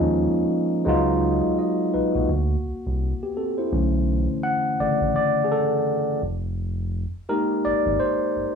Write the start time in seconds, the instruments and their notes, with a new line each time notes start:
Already playing: tine electric piano F3 G#3 A#3 C#4 D#4 F4
0.00 analog synth bass D#2
0.85 analog synth bass C#2, tine electric piano F#3 G#3 B3 D#4
0.89 tine electric piano F4
1.59 tine electric piano F#4 D#5
1.94 analog synth bass B1, tine electric piano D#4 B4
2.15 analog synth bass B1, tine electric piano A#3 F#4
2.29 analog synth bass D2
2.65 analog synth bass C2
2.86 analog synth bass C2
3.23 tine electric piano B3 G4
3.37 tine electric piano C4 A4
3.58 tine electric piano E4 C5
3.72 analog synth bass B1, tine electric piano D3 E3 A3 C#4
4.43 tine electric piano F#5
4.79 analog synth bass A1, tine electric piano C#3 D3 E3 A3 D5
5.01 analog synth bass A1
5.16 tine electric piano D5
5.44 tine electric piano G#4
5.52 tine electric piano A4
6.22 analog synth bass F1
7.29 tine electric piano G#3 A#3 D#4 G4 A#4
7.65 analog synth bass G#1, tine electric piano D5
7.86 analog synth bass G#1
8.00 tine electric piano C5
8.36 analog synth bass G1